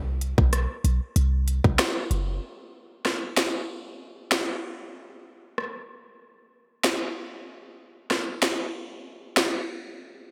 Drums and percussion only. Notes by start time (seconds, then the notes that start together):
0.21 closed hi-hat
0.38 kick
0.53 cross-stick, closed hi-hat
0.85 closed hi-hat
1.16 closed hi-hat
1.48 closed hi-hat
1.64 kick
1.79 finger snap, cross-stick, snare, closed hi-hat
2.11 closed hi-hat
3.05 cross-stick, snare
3.37 finger snap, snare
4.32 finger snap, snare
5.58 cross-stick
6.84 finger snap, snare
8.11 cross-stick, snare
8.42 finger snap, snare
9.37 finger snap, snare